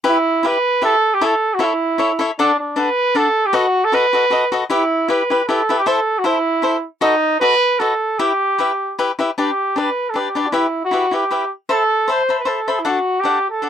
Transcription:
0.04 cavaquinho E4 G4 B4 E5
0.09 trumpet E4
0.43 cavaquinho E4 G4 B4 E5, trumpet B4
0.81 cavaquinho E4 G4 B4 E5, trumpet A4
1.14 trumpet G4
1.21 cavaquinho E4 A4 C#5 E5, trumpet A4
1.54 trumpet F#4
1.59 cavaquinho E4 A4 C#5 E5
1.64 trumpet E4
1.98 cavaquinho E4 A4 C#5 E5
2.19 cavaquinho E4 A4 C#5 E5
2.39 cavaquinho D4 A4 D5 F#5, trumpet D4
2.59 trumpet D4
2.76 cavaquinho D4 A4 D5 F#5, trumpet B4
3.15 cavaquinho D4 A4 D5 F#5, trumpet A4
3.46 trumpet G4
3.53 cavaquinho F#4 A4 B4 D#5, trumpet F#4
3.85 trumpet A4
3.92 cavaquinho F#4 A4 B4 D#5, trumpet B4
4.13 cavaquinho F#4 A4 B4 D#5
4.30 cavaquinho F#4 A4 B4 D#5
4.52 cavaquinho F#4 A4 B4 D#5
4.70 cavaquinho E4 G4 B4 E5, trumpet E4
5.08 cavaquinho E4 G4 B4 E5, trumpet B4
5.30 cavaquinho E4 G4 B4 E5
5.48 cavaquinho E4 G4 B4 E5, trumpet A4
5.69 cavaquinho E4 G4 B4 E5
5.78 trumpet G4
5.86 cavaquinho E4 A4 C5 E5, trumpet A4
6.19 trumpet F#4
6.24 cavaquinho E4 A4 C5 E5, trumpet E4
6.62 cavaquinho E4 A4 C5 E5
7.01 trumpet D#4, cavaquinho F#4 A4 B4 D#5
7.40 cavaquinho F#4 A4 B4 D#5, trumpet B4
7.79 cavaquinho F#4 A4 B4 D#5, trumpet A4
8.19 cavaquinho E4 G4 B4 E5, trumpet G4
8.58 cavaquinho E4 G4 B4 E5
8.99 cavaquinho E4 G4 B4 E5
9.19 cavaquinho E4 G4 B4 E5
9.38 cavaquinho D4 G4 B4 D5, trumpet G4
9.76 cavaquinho D4 G4 B4 D5, trumpet B4
10.10 cavaquinho D4, trumpet A4
10.15 cavaquinho G4 B4 D5, trumpet G4
10.35 cavaquinho D4 G4 B4 D5
10.46 trumpet D4
10.52 cavaquinho E4 G4 B4 E5, trumpet E4
10.85 trumpet F#4
10.91 cavaquinho E4 G4 B4 E5
11.11 cavaquinho E4 G4 B4 E5
11.15 trumpet G4
11.31 cavaquinho E4 G4 B4 E5
11.69 trumpet A4, cavaquinho C5 E5 A5 B5
12.08 cavaquinho C5 E5 A5 B5, trumpet C5
12.29 cavaquinho C5 E5 A5 B5
12.40 trumpet B4
12.45 trumpet A4, cavaquinho C5 E5 A5 B5
12.68 cavaquinho C5 E5 A5 B5
12.79 trumpet E4
12.85 cavaquinho D4 A4 D5 F#5, trumpet F#4
13.20 cavaquinho D4, trumpet G4
13.24 cavaquinho A4 D5 F#5
13.50 trumpet A4
13.62 cavaquinho D4 A4 D5 F#5

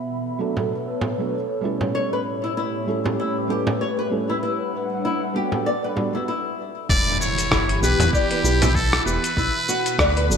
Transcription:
Already playing: analog synth pad B2 B3 E5 B5
0.10 analog synth pad A4
0.39 felt piano F#3 A3 B3 D4 A4
0.46 analog synth pad B4
0.56 felt piano F#3 A3 B3 D4 A4, analog synth pad C#5, frame drum
1.01 frame drum
1.18 felt piano F#3 A3 B3 D4 A4
1.61 felt piano G3 A3 C#4 E4 A4
1.81 frame drum
1.94 analog synth pad A2, nylon-string guitar C#5
2.09 analog synth pad A3, nylon-string guitar B4
2.44 nylon-string guitar E4
2.48 analog synth pad G4
2.57 nylon-string guitar E4
2.86 felt piano G3 A3 C#4 E4 A4
3.04 felt piano G3 A3 C#4 E4 A4, analog synth pad B4, frame drum
3.20 nylon-string guitar E4
3.48 felt piano G3 A3 C#4 E4 A4, nylon-string guitar G4
3.67 frame drum
3.81 nylon-string guitar C#5
3.99 nylon-string guitar B4
4.10 felt piano G3 A3 C#4 E4 A4
4.29 nylon-string guitar E4
4.41 analog synth pad G3, nylon-string guitar E4
4.50 analog synth pad D4
4.54 analog synth pad F#5
5.05 nylon-string guitar E4
5.11 analog synth pad A4
5.34 felt piano G3 B3 D4 F#4 B4, nylon-string guitar G4
5.52 felt piano G3 B3 D4 F#4 B4, frame drum
5.66 nylon-string guitar D5
5.84 nylon-string guitar B4
5.95 felt piano G3 B3 D4 F#4 D5, frame drum
6.12 felt piano G3 B3 D4 F#4, nylon-string guitar E4
6.16 felt piano B4
6.28 nylon-string guitar E4
6.89 analog synth bass E1, analog synth pad E3, nylon-string guitar E4, muted trumpet D5, kick, impact, cabasa
6.97 analog synth pad E4
7.21 analog synth pad G4, muted trumpet C#5, cabasa
7.33 analog synth pad B5
7.38 closed hi-hat, cabasa
7.51 analog synth bass G1, nylon-string guitar E4, kick, cross-stick, cabasa
7.69 closed hi-hat
7.81 analog synth bass B1, felt piano B3 E4 G4, nylon-string guitar G4, muted trumpet B4, cabasa
7.99 analog synth bass E2, felt piano B3 E4 G4, closed hi-hat, frame drum, cabasa
8.13 muted trumpet G4, nylon-string guitar D5, kick, cabasa
8.31 nylon-string guitar B4, closed hi-hat
8.43 analog synth bass B1, felt piano B3 E4 G4, cabasa
8.62 nylon-string guitar E4, closed hi-hat, frame drum, cabasa
8.75 nylon-string guitar E4, muted trumpet A4, kick, cabasa
8.93 cross-stick, closed hi-hat
9.05 analog synth bass E1, felt piano B3 E4 G4, muted trumpet B4, cabasa
9.24 closed hi-hat, cabasa
9.37 analog synth bass B1, analog synth pad B2, nylon-string guitar E4, kick, cabasa
9.56 analog synth pad B3
9.65 nylon-string guitar F#4, analog synth pad A4, cabasa
9.86 closed hi-hat, cabasa
9.99 analog synth bass D2, nylon-string guitar D5, kick, cross-stick, cabasa
10.17 nylon-string guitar B4, closed hi-hat
10.29 analog synth bass F#1, felt piano F#3 A3 B3 D4 A4, cabasa

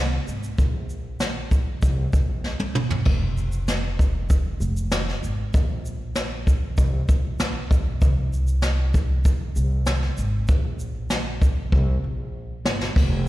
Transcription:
Already playing: upright bass C2
0.27 upright bass G#1, shaker
0.43 shaker
0.58 upright bass A#1, kick, shaker
0.90 shaker
1.20 snare, shaker
1.51 kick, shaker
1.82 upright bass C2, kick, shaker
2.13 upright bass A#1, kick, shaker
2.44 snare
2.60 high tom
2.75 upright bass G1, mid tom
2.90 floor tom
3.05 upright bass F1, kick, crash
3.37 shaker
3.52 shaker
3.68 snare, shaker
3.99 kick, shaker
4.30 kick, shaker
4.60 upright bass F1, shaker
4.77 shaker
4.92 snare, shaker
5.09 snare
5.22 upright bass G#1, shaker
5.54 upright bass A#1, kick, shaker
5.86 shaker
6.16 snare, shaker
6.47 kick, shaker
6.78 upright bass C2, kick, shaker
7.09 upright bass A#1, kick, shaker
7.40 snare, shaker
7.71 upright bass A#1, kick, shaker
8.02 upright bass C2, kick, shaker
8.33 shaker
8.47 shaker
8.62 snare, shaker
8.94 kick, shaker
9.25 kick, shaker
9.56 upright bass C2, shaker
9.86 snare, shaker
10.02 snare
10.18 upright bass G#1, shaker
10.48 upright bass A#1, kick, shaker
10.79 shaker
11.10 snare, shaker
11.42 kick, shaker
11.72 upright bass C2, kick
12.04 upright bass A#1
12.65 upright bass G1, snare
12.81 snare
12.96 upright bass F1, kick, crash

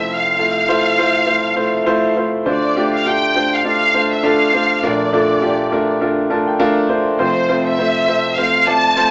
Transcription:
Already playing: grand piano F1 F2 A3 E4 F4 C5, violin section E5
0.13 violin section F5
0.39 grand piano A3 E4 F4 A4
0.68 grand piano A3 E4 F4 C5
0.98 grand piano A3 E4 F4 C5
1.26 grand piano A3 E4 F4 C5
1.56 grand piano A3 E4 F4 C5
1.86 grand piano A3 E4 F4 C5
2.17 grand piano A3 E4 F4 C5
2.46 grand piano D2 D3 A3 D4 F4 C5, violin section D5
2.76 grand piano A3 D4 F4 G4
2.94 violin section F5
3.06 grand piano A3 D4 F4 G4, violin section G5
3.35 grand piano A3 D4 F4 C5
3.54 violin section F5
3.64 grand piano A3 D4 F4 D5, violin section F5
3.94 grand piano A3 D4 F4 C5
4.12 violin section E5
4.23 grand piano A3 D4 F4 A4, violin section F5
4.54 grand piano A3 D4 F4 C5
4.83 grand piano A#1 A#2 A3 D4 F4 A#4, violin section D5
5.13 grand piano A3 D4 F4 A4
5.42 grand piano A3 D4 F4 G4
5.72 grand piano A3 D4 F4 A#4
6.01 grand piano A3 D4 F4 A#4
6.30 grand piano A3 D4 F4 A#4 A5
6.47 grand piano G5
6.59 grand piano A3 D4 F4 A#4 F5
6.89 grand piano A3 D4 F4 C5
7.19 grand piano F1 F2 A3 C4 F4 C5, violin section C5
7.49 grand piano A3 C4 F4 C5
7.67 violin section E5
7.79 grand piano A3 C4 F4 C5
8.08 grand piano A3 C4 F4 C5
8.38 grand piano A3 C4 F4 C5, violin section F5
8.66 grand piano A3 C4 F4 D5, violin section A5
8.96 grand piano A3 C4 F4 C5

